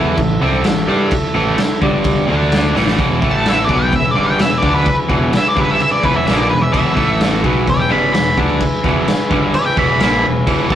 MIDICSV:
0, 0, Header, 1, 8, 480
1, 0, Start_track
1, 0, Tempo, 468019
1, 1149, Time_signature, 4, 2, 24, 8
1, 11026, End_track
2, 0, Start_track
2, 0, Title_t, "Lead electric guitar"
2, 0, Program_c, 0, 29
2, 3398, Note_on_c, 0, 81, 97
2, 3552, Note_off_c, 0, 81, 0
2, 3580, Note_on_c, 0, 76, 83
2, 3739, Note_off_c, 0, 76, 0
2, 3739, Note_on_c, 0, 74, 79
2, 3883, Note_off_c, 0, 74, 0
2, 3888, Note_on_c, 0, 79, 100
2, 4038, Note_off_c, 0, 79, 0
2, 4056, Note_on_c, 0, 76, 88
2, 4216, Note_off_c, 0, 76, 0
2, 4216, Note_on_c, 0, 74, 92
2, 4362, Note_off_c, 0, 74, 0
2, 4372, Note_on_c, 0, 79, 90
2, 4519, Note_on_c, 0, 76, 83
2, 4520, Note_off_c, 0, 79, 0
2, 4696, Note_off_c, 0, 76, 0
2, 4696, Note_on_c, 0, 74, 82
2, 4842, Note_off_c, 0, 74, 0
2, 4863, Note_on_c, 0, 71, 96
2, 5084, Note_off_c, 0, 71, 0
2, 5510, Note_on_c, 0, 76, 93
2, 5620, Note_off_c, 0, 76, 0
2, 5620, Note_on_c, 0, 74, 84
2, 5726, Note_off_c, 0, 74, 0
2, 5745, Note_on_c, 0, 71, 95
2, 5848, Note_off_c, 0, 71, 0
2, 5853, Note_on_c, 0, 76, 99
2, 5955, Note_off_c, 0, 76, 0
2, 5968, Note_on_c, 0, 76, 97
2, 6064, Note_off_c, 0, 76, 0
2, 6068, Note_on_c, 0, 74, 92
2, 6206, Note_off_c, 0, 74, 0
2, 6206, Note_on_c, 0, 71, 86
2, 6316, Note_on_c, 0, 76, 95
2, 6318, Note_off_c, 0, 71, 0
2, 6417, Note_off_c, 0, 76, 0
2, 6429, Note_on_c, 0, 76, 89
2, 6534, Note_on_c, 0, 74, 85
2, 6549, Note_off_c, 0, 76, 0
2, 6660, Note_off_c, 0, 74, 0
2, 6664, Note_on_c, 0, 71, 90
2, 6783, Note_on_c, 0, 76, 88
2, 6786, Note_off_c, 0, 71, 0
2, 6893, Note_off_c, 0, 76, 0
2, 6906, Note_on_c, 0, 76, 104
2, 7375, Note_off_c, 0, 76, 0
2, 7894, Note_on_c, 0, 74, 112
2, 7995, Note_on_c, 0, 79, 96
2, 8000, Note_off_c, 0, 74, 0
2, 8110, Note_off_c, 0, 79, 0
2, 8123, Note_on_c, 0, 83, 99
2, 8330, Note_off_c, 0, 83, 0
2, 8342, Note_on_c, 0, 83, 110
2, 8579, Note_off_c, 0, 83, 0
2, 9790, Note_on_c, 0, 74, 102
2, 9901, Note_off_c, 0, 74, 0
2, 9905, Note_on_c, 0, 79, 96
2, 10022, Note_off_c, 0, 79, 0
2, 10033, Note_on_c, 0, 83, 87
2, 10262, Note_off_c, 0, 83, 0
2, 10285, Note_on_c, 0, 83, 93
2, 10508, Note_off_c, 0, 83, 0
2, 11026, End_track
3, 0, Start_track
3, 0, Title_t, "Transistor combo organ"
3, 0, Program_c, 1, 18
3, 0, Note_on_c, 1, 64, 79
3, 0, Note_on_c, 1, 69, 75
3, 0, Note_on_c, 1, 76, 84
3, 1843, Note_off_c, 1, 64, 0
3, 1849, Note_off_c, 1, 69, 0
3, 1854, Note_off_c, 1, 76, 0
3, 1860, Note_on_c, 1, 62, 75
3, 1873, Note_on_c, 1, 74, 90
3, 1874, Note_on_c, 1, 67, 67
3, 2335, Note_off_c, 1, 62, 0
3, 2348, Note_on_c, 1, 62, 73
3, 2350, Note_on_c, 1, 69, 66
3, 2354, Note_off_c, 1, 67, 0
3, 2354, Note_off_c, 1, 74, 0
3, 2366, Note_on_c, 1, 74, 80
3, 2832, Note_off_c, 1, 62, 0
3, 2833, Note_off_c, 1, 69, 0
3, 2841, Note_off_c, 1, 74, 0
3, 3302, Note_on_c, 1, 64, 60
3, 3312, Note_on_c, 1, 69, 56
3, 3326, Note_on_c, 1, 76, 70
3, 3771, Note_on_c, 1, 68, 73
3, 3782, Note_on_c, 1, 71, 62
3, 3790, Note_off_c, 1, 64, 0
3, 3794, Note_off_c, 1, 76, 0
3, 3795, Note_off_c, 1, 69, 0
3, 3807, Note_on_c, 1, 76, 74
3, 7102, Note_off_c, 1, 68, 0
3, 7108, Note_off_c, 1, 71, 0
3, 7120, Note_off_c, 1, 76, 0
3, 7140, Note_on_c, 1, 64, 63
3, 7141, Note_on_c, 1, 69, 59
3, 7154, Note_on_c, 1, 76, 72
3, 7625, Note_on_c, 1, 68, 83
3, 7627, Note_off_c, 1, 64, 0
3, 7627, Note_off_c, 1, 69, 0
3, 7634, Note_off_c, 1, 76, 0
3, 7644, Note_on_c, 1, 71, 76
3, 7661, Note_on_c, 1, 76, 91
3, 10937, Note_off_c, 1, 68, 0
3, 10947, Note_off_c, 1, 71, 0
3, 10949, Note_on_c, 1, 64, 69
3, 10955, Note_off_c, 1, 76, 0
3, 10965, Note_on_c, 1, 69, 56
3, 10973, Note_on_c, 1, 76, 76
3, 11026, Note_off_c, 1, 64, 0
3, 11026, Note_off_c, 1, 69, 0
3, 11026, Note_off_c, 1, 76, 0
3, 11026, End_track
4, 0, Start_track
4, 0, Title_t, "Overdriven electric guitar"
4, 0, Program_c, 2, 29
4, 0, Note_on_c, 2, 52, 105
4, 0, Note_on_c, 2, 59, 113
4, 0, Note_on_c, 2, 64, 110
4, 167, Note_off_c, 2, 52, 0
4, 174, Note_on_c, 2, 45, 72
4, 175, Note_off_c, 2, 59, 0
4, 179, Note_on_c, 2, 52, 90
4, 181, Note_off_c, 2, 64, 0
4, 372, Note_off_c, 2, 45, 0
4, 375, Note_off_c, 2, 52, 0
4, 424, Note_on_c, 2, 48, 101
4, 428, Note_on_c, 2, 55, 108
4, 440, Note_on_c, 2, 60, 106
4, 658, Note_off_c, 2, 48, 0
4, 661, Note_off_c, 2, 55, 0
4, 662, Note_on_c, 2, 45, 65
4, 667, Note_off_c, 2, 60, 0
4, 672, Note_on_c, 2, 52, 80
4, 857, Note_off_c, 2, 45, 0
4, 862, Note_off_c, 2, 52, 0
4, 895, Note_on_c, 2, 55, 95
4, 904, Note_on_c, 2, 62, 100
4, 913, Note_on_c, 2, 67, 100
4, 1135, Note_off_c, 2, 55, 0
4, 1140, Note_off_c, 2, 62, 0
4, 1144, Note_off_c, 2, 67, 0
4, 1378, Note_on_c, 2, 45, 105
4, 1388, Note_on_c, 2, 52, 101
4, 1393, Note_on_c, 2, 57, 105
4, 1615, Note_off_c, 2, 45, 0
4, 1622, Note_off_c, 2, 52, 0
4, 1625, Note_off_c, 2, 57, 0
4, 1861, Note_on_c, 2, 43, 92
4, 1868, Note_on_c, 2, 50, 97
4, 1880, Note_on_c, 2, 55, 98
4, 2321, Note_off_c, 2, 50, 0
4, 2334, Note_on_c, 2, 50, 95
4, 2340, Note_off_c, 2, 43, 0
4, 2340, Note_off_c, 2, 55, 0
4, 2340, Note_on_c, 2, 57, 101
4, 2347, Note_on_c, 2, 62, 118
4, 2817, Note_off_c, 2, 50, 0
4, 2821, Note_off_c, 2, 57, 0
4, 2824, Note_off_c, 2, 62, 0
4, 2824, Note_on_c, 2, 45, 89
4, 2829, Note_on_c, 2, 52, 106
4, 2838, Note_on_c, 2, 57, 92
4, 3062, Note_off_c, 2, 45, 0
4, 3065, Note_off_c, 2, 52, 0
4, 3067, Note_on_c, 2, 40, 88
4, 3069, Note_off_c, 2, 57, 0
4, 3073, Note_on_c, 2, 47, 102
4, 3085, Note_on_c, 2, 52, 111
4, 3295, Note_off_c, 2, 52, 0
4, 3296, Note_off_c, 2, 47, 0
4, 3300, Note_on_c, 2, 45, 99
4, 3304, Note_off_c, 2, 40, 0
4, 3307, Note_on_c, 2, 52, 106
4, 3314, Note_on_c, 2, 57, 115
4, 3774, Note_off_c, 2, 45, 0
4, 3778, Note_on_c, 2, 47, 88
4, 3785, Note_off_c, 2, 52, 0
4, 3788, Note_off_c, 2, 57, 0
4, 3789, Note_on_c, 2, 54, 92
4, 3798, Note_on_c, 2, 59, 90
4, 4020, Note_off_c, 2, 47, 0
4, 4026, Note_off_c, 2, 54, 0
4, 4027, Note_on_c, 2, 40, 70
4, 4030, Note_off_c, 2, 59, 0
4, 4035, Note_on_c, 2, 47, 77
4, 4224, Note_off_c, 2, 40, 0
4, 4228, Note_off_c, 2, 47, 0
4, 4257, Note_on_c, 2, 43, 93
4, 4269, Note_on_c, 2, 50, 96
4, 4274, Note_on_c, 2, 55, 106
4, 4500, Note_off_c, 2, 43, 0
4, 4506, Note_off_c, 2, 50, 0
4, 4509, Note_off_c, 2, 55, 0
4, 4509, Note_on_c, 2, 40, 66
4, 4512, Note_on_c, 2, 47, 74
4, 4705, Note_off_c, 2, 40, 0
4, 4707, Note_off_c, 2, 47, 0
4, 4743, Note_on_c, 2, 50, 97
4, 4750, Note_on_c, 2, 57, 92
4, 4758, Note_on_c, 2, 62, 99
4, 4983, Note_off_c, 2, 50, 0
4, 4987, Note_off_c, 2, 57, 0
4, 4991, Note_off_c, 2, 62, 0
4, 5216, Note_on_c, 2, 40, 94
4, 5225, Note_on_c, 2, 47, 101
4, 5232, Note_on_c, 2, 52, 105
4, 5454, Note_off_c, 2, 40, 0
4, 5464, Note_off_c, 2, 47, 0
4, 5468, Note_off_c, 2, 52, 0
4, 5701, Note_on_c, 2, 43, 95
4, 5712, Note_on_c, 2, 50, 103
4, 5716, Note_on_c, 2, 55, 103
4, 5942, Note_off_c, 2, 43, 0
4, 5948, Note_off_c, 2, 50, 0
4, 5950, Note_off_c, 2, 55, 0
4, 6174, Note_on_c, 2, 40, 95
4, 6186, Note_on_c, 2, 47, 104
4, 6194, Note_on_c, 2, 52, 107
4, 6418, Note_off_c, 2, 40, 0
4, 6421, Note_off_c, 2, 47, 0
4, 6425, Note_on_c, 2, 46, 97
4, 6428, Note_off_c, 2, 52, 0
4, 6438, Note_on_c, 2, 53, 103
4, 6438, Note_on_c, 2, 58, 106
4, 6661, Note_off_c, 2, 46, 0
4, 6661, Note_on_c, 2, 40, 68
4, 6665, Note_on_c, 2, 47, 74
4, 6670, Note_off_c, 2, 53, 0
4, 6670, Note_off_c, 2, 58, 0
4, 6860, Note_off_c, 2, 40, 0
4, 6863, Note_off_c, 2, 47, 0
4, 6894, Note_on_c, 2, 40, 89
4, 6900, Note_on_c, 2, 47, 100
4, 6908, Note_on_c, 2, 52, 108
4, 7126, Note_off_c, 2, 47, 0
4, 7126, Note_off_c, 2, 52, 0
4, 7130, Note_on_c, 2, 45, 94
4, 7137, Note_off_c, 2, 40, 0
4, 7139, Note_on_c, 2, 52, 99
4, 7145, Note_on_c, 2, 57, 119
4, 7615, Note_off_c, 2, 45, 0
4, 7619, Note_off_c, 2, 52, 0
4, 7622, Note_off_c, 2, 57, 0
4, 7623, Note_on_c, 2, 47, 95
4, 7629, Note_on_c, 2, 54, 104
4, 7632, Note_on_c, 2, 59, 97
4, 7859, Note_off_c, 2, 47, 0
4, 7861, Note_on_c, 2, 40, 70
4, 7864, Note_off_c, 2, 54, 0
4, 7866, Note_off_c, 2, 59, 0
4, 7871, Note_on_c, 2, 47, 79
4, 8059, Note_off_c, 2, 40, 0
4, 8064, Note_off_c, 2, 47, 0
4, 8098, Note_on_c, 2, 43, 101
4, 8107, Note_on_c, 2, 50, 106
4, 8114, Note_on_c, 2, 55, 102
4, 8338, Note_off_c, 2, 43, 0
4, 8342, Note_off_c, 2, 50, 0
4, 8346, Note_off_c, 2, 55, 0
4, 8346, Note_on_c, 2, 40, 66
4, 8349, Note_on_c, 2, 47, 76
4, 8541, Note_off_c, 2, 40, 0
4, 8542, Note_off_c, 2, 47, 0
4, 8586, Note_on_c, 2, 50, 99
4, 8592, Note_on_c, 2, 57, 94
4, 8597, Note_on_c, 2, 62, 102
4, 8821, Note_off_c, 2, 50, 0
4, 8824, Note_off_c, 2, 57, 0
4, 8827, Note_off_c, 2, 62, 0
4, 9062, Note_on_c, 2, 40, 92
4, 9069, Note_on_c, 2, 47, 105
4, 9079, Note_on_c, 2, 52, 103
4, 9298, Note_off_c, 2, 40, 0
4, 9302, Note_off_c, 2, 47, 0
4, 9307, Note_off_c, 2, 52, 0
4, 9544, Note_on_c, 2, 43, 93
4, 9555, Note_on_c, 2, 50, 93
4, 9560, Note_on_c, 2, 55, 104
4, 9778, Note_off_c, 2, 43, 0
4, 9784, Note_off_c, 2, 50, 0
4, 9786, Note_off_c, 2, 55, 0
4, 10023, Note_on_c, 2, 40, 91
4, 10024, Note_on_c, 2, 47, 98
4, 10038, Note_on_c, 2, 52, 108
4, 10251, Note_off_c, 2, 47, 0
4, 10256, Note_on_c, 2, 46, 99
4, 10257, Note_off_c, 2, 40, 0
4, 10259, Note_off_c, 2, 52, 0
4, 10263, Note_on_c, 2, 53, 109
4, 10274, Note_on_c, 2, 58, 102
4, 10493, Note_off_c, 2, 46, 0
4, 10496, Note_off_c, 2, 53, 0
4, 10502, Note_off_c, 2, 58, 0
4, 10507, Note_on_c, 2, 40, 62
4, 10513, Note_on_c, 2, 47, 67
4, 10697, Note_off_c, 2, 40, 0
4, 10700, Note_off_c, 2, 47, 0
4, 10738, Note_on_c, 2, 40, 93
4, 10745, Note_on_c, 2, 47, 103
4, 10750, Note_on_c, 2, 52, 112
4, 10973, Note_off_c, 2, 40, 0
4, 10976, Note_off_c, 2, 47, 0
4, 10979, Note_off_c, 2, 52, 0
4, 10986, Note_on_c, 2, 45, 92
4, 10994, Note_on_c, 2, 52, 101
4, 11026, Note_off_c, 2, 45, 0
4, 11026, Note_off_c, 2, 52, 0
4, 11026, End_track
5, 0, Start_track
5, 0, Title_t, "Picked electric bass"
5, 0, Program_c, 3, 34
5, 0, Note_on_c, 3, 40, 102
5, 167, Note_off_c, 3, 40, 0
5, 184, Note_on_c, 3, 33, 83
5, 408, Note_off_c, 3, 33, 0
5, 415, Note_on_c, 3, 36, 103
5, 644, Note_off_c, 3, 36, 0
5, 668, Note_on_c, 3, 33, 88
5, 892, Note_off_c, 3, 33, 0
5, 900, Note_on_c, 3, 43, 106
5, 1128, Note_off_c, 3, 43, 0
5, 1381, Note_on_c, 3, 33, 97
5, 1609, Note_off_c, 3, 33, 0
5, 1865, Note_on_c, 3, 31, 103
5, 2316, Note_off_c, 3, 31, 0
5, 2337, Note_on_c, 3, 38, 96
5, 2792, Note_off_c, 3, 38, 0
5, 2833, Note_on_c, 3, 33, 91
5, 3057, Note_off_c, 3, 33, 0
5, 3068, Note_on_c, 3, 28, 87
5, 3295, Note_off_c, 3, 28, 0
5, 3307, Note_on_c, 3, 33, 99
5, 3758, Note_off_c, 3, 33, 0
5, 3789, Note_on_c, 3, 35, 99
5, 4016, Note_off_c, 3, 35, 0
5, 4029, Note_on_c, 3, 28, 80
5, 4256, Note_off_c, 3, 28, 0
5, 4277, Note_on_c, 3, 31, 97
5, 4493, Note_off_c, 3, 31, 0
5, 4499, Note_on_c, 3, 28, 85
5, 4731, Note_off_c, 3, 28, 0
5, 4746, Note_on_c, 3, 38, 101
5, 4974, Note_off_c, 3, 38, 0
5, 5226, Note_on_c, 3, 28, 95
5, 5455, Note_off_c, 3, 28, 0
5, 5711, Note_on_c, 3, 31, 99
5, 5937, Note_off_c, 3, 31, 0
5, 6194, Note_on_c, 3, 28, 96
5, 6418, Note_off_c, 3, 28, 0
5, 6435, Note_on_c, 3, 34, 105
5, 6659, Note_off_c, 3, 34, 0
5, 6675, Note_on_c, 3, 28, 92
5, 6899, Note_off_c, 3, 28, 0
5, 6907, Note_on_c, 3, 28, 95
5, 7134, Note_off_c, 3, 28, 0
5, 7147, Note_on_c, 3, 33, 100
5, 7597, Note_off_c, 3, 33, 0
5, 7632, Note_on_c, 3, 35, 92
5, 7856, Note_off_c, 3, 35, 0
5, 7873, Note_on_c, 3, 28, 85
5, 8096, Note_off_c, 3, 28, 0
5, 8114, Note_on_c, 3, 31, 97
5, 8336, Note_off_c, 3, 31, 0
5, 8356, Note_on_c, 3, 28, 89
5, 8577, Note_off_c, 3, 28, 0
5, 8593, Note_on_c, 3, 38, 105
5, 8815, Note_off_c, 3, 38, 0
5, 9068, Note_on_c, 3, 28, 100
5, 9292, Note_off_c, 3, 28, 0
5, 9546, Note_on_c, 3, 31, 96
5, 9770, Note_off_c, 3, 31, 0
5, 10019, Note_on_c, 3, 28, 87
5, 10245, Note_off_c, 3, 28, 0
5, 10264, Note_on_c, 3, 34, 96
5, 10487, Note_off_c, 3, 34, 0
5, 10508, Note_on_c, 3, 28, 79
5, 10729, Note_off_c, 3, 28, 0
5, 10735, Note_on_c, 3, 28, 87
5, 10961, Note_off_c, 3, 28, 0
5, 10977, Note_on_c, 3, 33, 106
5, 11026, Note_off_c, 3, 33, 0
5, 11026, End_track
6, 0, Start_track
6, 0, Title_t, "Muted overdriven electric guitar strokes"
6, 1146, Note_on_c, 9, 29, 58
6, 1249, Note_off_c, 9, 29, 0
6, 1627, Note_on_c, 9, 29, 66
6, 1730, Note_off_c, 9, 29, 0
6, 4987, Note_on_c, 9, 29, 63
6, 5090, Note_off_c, 9, 29, 0
6, 5466, Note_on_c, 9, 29, 61
6, 5569, Note_off_c, 9, 29, 0
6, 5952, Note_on_c, 9, 29, 66
6, 6055, Note_off_c, 9, 29, 0
6, 8821, Note_on_c, 9, 29, 59
6, 8923, Note_off_c, 9, 29, 0
6, 9311, Note_on_c, 9, 29, 61
6, 9413, Note_off_c, 9, 29, 0
6, 9801, Note_on_c, 9, 29, 65
6, 9903, Note_off_c, 9, 29, 0
6, 11026, End_track
7, 0, Start_track
7, 0, Title_t, "Muted picked electric bass strokes"
7, 1147, Note_on_c, 9, 29, 39
7, 1250, Note_off_c, 9, 29, 0
7, 1627, Note_on_c, 9, 29, 42
7, 1730, Note_off_c, 9, 29, 0
7, 4989, Note_on_c, 9, 29, 43
7, 5091, Note_off_c, 9, 29, 0
7, 5472, Note_on_c, 9, 29, 39
7, 5575, Note_off_c, 9, 29, 0
7, 5950, Note_on_c, 9, 29, 44
7, 6053, Note_off_c, 9, 29, 0
7, 8822, Note_on_c, 9, 29, 43
7, 8925, Note_off_c, 9, 29, 0
7, 9324, Note_on_c, 9, 29, 43
7, 9427, Note_off_c, 9, 29, 0
7, 9795, Note_on_c, 9, 29, 43
7, 9897, Note_off_c, 9, 29, 0
7, 11026, End_track
8, 0, Start_track
8, 0, Title_t, "Drums"
8, 178, Note_on_c, 9, 49, 63
8, 182, Note_on_c, 9, 36, 112
8, 280, Note_off_c, 9, 49, 0
8, 285, Note_off_c, 9, 36, 0
8, 657, Note_on_c, 9, 49, 67
8, 665, Note_on_c, 9, 38, 117
8, 759, Note_off_c, 9, 49, 0
8, 768, Note_off_c, 9, 38, 0
8, 1137, Note_on_c, 9, 49, 75
8, 1147, Note_on_c, 9, 36, 124
8, 1240, Note_off_c, 9, 49, 0
8, 1249, Note_off_c, 9, 36, 0
8, 1619, Note_on_c, 9, 49, 71
8, 1627, Note_on_c, 9, 38, 116
8, 1722, Note_off_c, 9, 49, 0
8, 1730, Note_off_c, 9, 38, 0
8, 1864, Note_on_c, 9, 36, 94
8, 1966, Note_off_c, 9, 36, 0
8, 2093, Note_on_c, 9, 49, 66
8, 2102, Note_on_c, 9, 36, 118
8, 2196, Note_off_c, 9, 49, 0
8, 2205, Note_off_c, 9, 36, 0
8, 2584, Note_on_c, 9, 49, 61
8, 2592, Note_on_c, 9, 38, 112
8, 2686, Note_off_c, 9, 49, 0
8, 2694, Note_off_c, 9, 38, 0
8, 2832, Note_on_c, 9, 38, 74
8, 2935, Note_off_c, 9, 38, 0
8, 2948, Note_on_c, 9, 38, 91
8, 3051, Note_off_c, 9, 38, 0
8, 3064, Note_on_c, 9, 36, 116
8, 3068, Note_on_c, 9, 49, 65
8, 3167, Note_off_c, 9, 36, 0
8, 3171, Note_off_c, 9, 49, 0
8, 3304, Note_on_c, 9, 36, 104
8, 3407, Note_off_c, 9, 36, 0
8, 3544, Note_on_c, 9, 49, 63
8, 3553, Note_on_c, 9, 38, 112
8, 3647, Note_off_c, 9, 49, 0
8, 3655, Note_off_c, 9, 38, 0
8, 3785, Note_on_c, 9, 36, 114
8, 3887, Note_off_c, 9, 36, 0
8, 4027, Note_on_c, 9, 36, 93
8, 4034, Note_on_c, 9, 49, 58
8, 4129, Note_off_c, 9, 36, 0
8, 4136, Note_off_c, 9, 49, 0
8, 4504, Note_on_c, 9, 49, 65
8, 4512, Note_on_c, 9, 38, 109
8, 4607, Note_off_c, 9, 49, 0
8, 4615, Note_off_c, 9, 38, 0
8, 4745, Note_on_c, 9, 36, 113
8, 4848, Note_off_c, 9, 36, 0
8, 4981, Note_on_c, 9, 49, 69
8, 4985, Note_on_c, 9, 36, 116
8, 5084, Note_off_c, 9, 49, 0
8, 5088, Note_off_c, 9, 36, 0
8, 5226, Note_on_c, 9, 36, 109
8, 5329, Note_off_c, 9, 36, 0
8, 5465, Note_on_c, 9, 49, 67
8, 5473, Note_on_c, 9, 38, 116
8, 5567, Note_off_c, 9, 49, 0
8, 5575, Note_off_c, 9, 38, 0
8, 5709, Note_on_c, 9, 36, 108
8, 5812, Note_off_c, 9, 36, 0
8, 5951, Note_on_c, 9, 49, 65
8, 6053, Note_off_c, 9, 49, 0
8, 6190, Note_on_c, 9, 36, 103
8, 6292, Note_off_c, 9, 36, 0
8, 6432, Note_on_c, 9, 49, 64
8, 6441, Note_on_c, 9, 38, 104
8, 6535, Note_off_c, 9, 49, 0
8, 6543, Note_off_c, 9, 38, 0
8, 6912, Note_on_c, 9, 36, 115
8, 6915, Note_on_c, 9, 49, 70
8, 7014, Note_off_c, 9, 36, 0
8, 7018, Note_off_c, 9, 49, 0
8, 7149, Note_on_c, 9, 36, 107
8, 7251, Note_off_c, 9, 36, 0
8, 7389, Note_on_c, 9, 49, 67
8, 7397, Note_on_c, 9, 38, 114
8, 7492, Note_off_c, 9, 49, 0
8, 7500, Note_off_c, 9, 38, 0
8, 7632, Note_on_c, 9, 36, 108
8, 7734, Note_off_c, 9, 36, 0
8, 7871, Note_on_c, 9, 36, 94
8, 7875, Note_on_c, 9, 49, 59
8, 7974, Note_off_c, 9, 36, 0
8, 7978, Note_off_c, 9, 49, 0
8, 8350, Note_on_c, 9, 49, 62
8, 8359, Note_on_c, 9, 38, 115
8, 8453, Note_off_c, 9, 49, 0
8, 8461, Note_off_c, 9, 38, 0
8, 8590, Note_on_c, 9, 36, 111
8, 8692, Note_off_c, 9, 36, 0
8, 8824, Note_on_c, 9, 49, 73
8, 8828, Note_on_c, 9, 36, 121
8, 8927, Note_off_c, 9, 49, 0
8, 8930, Note_off_c, 9, 36, 0
8, 9068, Note_on_c, 9, 36, 107
8, 9171, Note_off_c, 9, 36, 0
8, 9309, Note_on_c, 9, 49, 70
8, 9317, Note_on_c, 9, 38, 119
8, 9412, Note_off_c, 9, 49, 0
8, 9420, Note_off_c, 9, 38, 0
8, 9546, Note_on_c, 9, 36, 107
8, 9649, Note_off_c, 9, 36, 0
8, 9783, Note_on_c, 9, 49, 66
8, 9886, Note_off_c, 9, 49, 0
8, 10023, Note_on_c, 9, 36, 117
8, 10125, Note_off_c, 9, 36, 0
8, 10258, Note_on_c, 9, 49, 66
8, 10266, Note_on_c, 9, 38, 112
8, 10360, Note_off_c, 9, 49, 0
8, 10368, Note_off_c, 9, 38, 0
8, 10740, Note_on_c, 9, 36, 116
8, 10740, Note_on_c, 9, 49, 64
8, 10842, Note_off_c, 9, 36, 0
8, 10843, Note_off_c, 9, 49, 0
8, 10978, Note_on_c, 9, 36, 118
8, 11026, Note_off_c, 9, 36, 0
8, 11026, End_track
0, 0, End_of_file